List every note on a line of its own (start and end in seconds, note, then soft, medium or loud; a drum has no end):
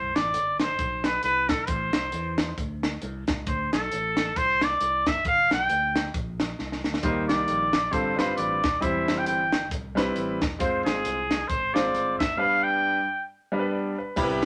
0.00 0.12 C2 loud
0.00 0.17 C5 medium
0.15 0.32 A1 medium
0.15 0.59 D5 loud
0.15 snare medium
0.15 closed hi-hat medium
0.34 0.73 G1 medium
0.34 closed hi-hat loud
0.60 1.07 C5 medium
0.60 snare loud
0.60 closed hi-hat medium
0.79 1.17 B1 medium
0.79 kick medium
0.79 closed hi-hat medium
1.04 1.23 B4 medium
1.04 snare medium
1.04 closed hi-hat medium
1.23 1.62 C2 medium
1.23 1.51 B4 medium
1.23 closed hi-hat medium
1.49 1.70 A4 medium
1.49 kick loud
1.49 snare loud
1.49 closed hi-hat medium
1.67 1.91 A1 loud
1.67 2.58 C5 medium
1.67 kick loud
1.67 closed hi-hat medium
1.93 2.11 C2 medium
1.93 snare loud
1.93 closed hi-hat medium
2.12 2.51 E2 medium
2.12 closed hi-hat loud
2.38 snare loud
2.38 closed hi-hat medium
2.58 2.96 D2 medium
2.58 kick medium
2.58 closed hi-hat medium
2.83 snare loud
2.83 closed hi-hat medium
3.02 3.25 C2 loud
3.02 closed hi-hat medium
3.27 3.44 C#2 medium
3.27 kick loud
3.27 snare loud
3.27 closed hi-hat medium
3.47 3.69 D2 loud
3.47 3.71 C5 medium
3.47 kick medium
3.47 closed hi-hat medium
3.73 3.89 B1 medium
3.73 4.39 A4 medium
3.73 snare loud
3.73 closed hi-hat medium
3.92 4.30 A1 medium
3.92 closed hi-hat loud
4.17 snare loud
4.17 closed hi-hat medium
4.36 4.74 C2 medium
4.36 4.65 C5 loud
4.36 kick loud
4.36 closed hi-hat medium
4.61 5.10 D5 medium
4.61 snare medium
4.61 closed hi-hat medium
4.81 5.03 C2 medium
4.81 closed hi-hat medium
5.06 5.23 F#1 medium
5.06 5.26 E5 medium
5.06 kick medium
5.06 snare loud
5.06 closed hi-hat medium
5.25 5.47 G1 loud
5.25 5.50 F5 medium
5.25 kick loud
5.25 closed hi-hat medium
5.51 5.67 B1 medium
5.51 6.12 G5 medium
5.51 snare loud
5.51 closed hi-hat medium
5.70 6.08 D2 medium
5.70 closed hi-hat loud
5.96 snare loud
5.96 closed hi-hat medium
6.14 6.52 A#1 medium
6.14 kick loud
6.14 closed hi-hat medium
6.40 snare medium
6.40 closed hi-hat medium
6.59 6.81 C2 medium
6.59 snare soft
6.72 snare medium
6.84 7.01 D2 medium
6.84 snare medium
6.94 snare medium
7.03 7.25 D#2 medium
7.03 7.70 D#3 medium
7.03 7.61 G3 medium
7.03 7.61 A#3 medium
7.03 7.62 D#4 medium
7.03 7.62 A#4 medium
7.03 7.27 C5 medium
7.03 kick loud
7.03 closed hi-hat medium
7.29 7.46 C2 medium
7.29 7.93 D5 medium
7.29 snare medium
7.29 closed hi-hat medium
7.48 7.87 A#1 medium
7.48 closed hi-hat loud
7.73 snare loud
7.73 closed hi-hat medium
7.91 8.31 G1 loud
7.91 8.59 G2 medium
7.91 8.13 G3 medium
7.91 8.13 C4 medium
7.91 8.13 F4 medium
7.91 8.14 A4 medium
7.91 8.18 C5 medium
7.91 kick medium
7.91 closed hi-hat medium
8.16 8.59 G3 medium
8.16 8.59 C4 medium
8.16 8.60 F4 medium
8.16 8.60 B4 medium
8.16 8.36 C5 medium
8.16 snare medium
8.16 closed hi-hat medium
8.37 8.60 A1 loud
8.37 8.83 D5 medium
8.37 closed hi-hat medium
8.64 8.79 D#1 medium
8.64 kick loud
8.64 snare loud
8.64 closed hi-hat medium
8.80 9.04 E1 loud
8.80 9.48 E3 medium
8.80 9.39 G3 medium
8.80 9.39 C4 medium
8.80 9.39 E4 medium
8.80 9.40 C5 medium
8.80 9.20 E5 medium
8.80 kick loud
8.80 closed hi-hat medium
9.08 9.24 F1 medium
9.08 snare medium
9.08 closed hi-hat medium
9.18 9.27 G5 loud
9.26 9.72 G1 medium
9.26 9.69 G5 medium
9.26 closed hi-hat loud
9.52 snare loud
9.52 closed hi-hat medium
9.71 10.09 C2 medium
9.71 kick loud
9.71 closed hi-hat medium
9.95 10.37 G3 medium
9.95 10.38 C4 medium
9.95 10.38 E4 medium
9.95 10.38 B4 medium
9.95 snare loud
9.95 closed hi-hat medium
10.16 10.44 A1 medium
10.16 closed hi-hat medium
10.41 10.58 E1 medium
10.41 kick loud
10.41 snare loud
10.41 closed hi-hat medium
10.59 10.82 F1 medium
10.59 11.17 G#3 medium
10.59 11.17 C4 medium
10.59 11.18 F4 medium
10.59 10.84 C5 medium
10.59 11.18 C5 medium
10.59 kick loud
10.59 closed hi-hat medium
10.85 11.02 G#1 medium
10.85 11.49 G#4 medium
10.85 snare loud
10.85 closed hi-hat medium
11.05 11.43 C2 medium
11.05 closed hi-hat loud
11.31 snare loud
11.31 closed hi-hat medium
11.48 11.72 G#1 medium
11.48 11.75 C5 medium
11.48 kick loud
11.48 closed hi-hat medium
11.73 11.92 G#1 medium
11.73 12.16 G#3 medium
11.73 12.16 C4 medium
11.73 12.16 F4 medium
11.73 12.17 C5 medium
11.73 12.18 D5 medium
11.73 snare loud
11.73 closed hi-hat medium
11.94 12.16 G1 loud
11.94 closed hi-hat medium
12.19 12.36 F#1 medium
12.19 12.39 E5 medium
12.19 kick medium
12.19 snare loud
12.19 closed hi-hat medium
12.37 13.05 G2 medium
12.37 12.96 G3 medium
12.37 12.96 B3 medium
12.37 12.96 D4 medium
12.37 12.97 B4 medium
12.37 12.65 F5 medium
12.64 13.27 G5 loud
13.52 13.94 G3 medium
13.52 13.95 B3 medium
13.52 13.95 D4 medium
13.52 13.58 A#4 medium
13.59 13.75 B4 medium
13.71 13.96 D5 medium
13.98 14.22 B4 medium
14.16 14.45 C2 loud
14.16 14.45 C3 medium
14.16 14.45 G3 medium
14.16 14.45 B3 medium
14.16 14.45 E4 medium
14.16 14.45 G4 loud
14.16 14.24 A#4 medium
14.16 kick loud
14.16 crash medium
14.16 tambourine medium
14.24 14.45 B4 medium
14.42 tambourine soft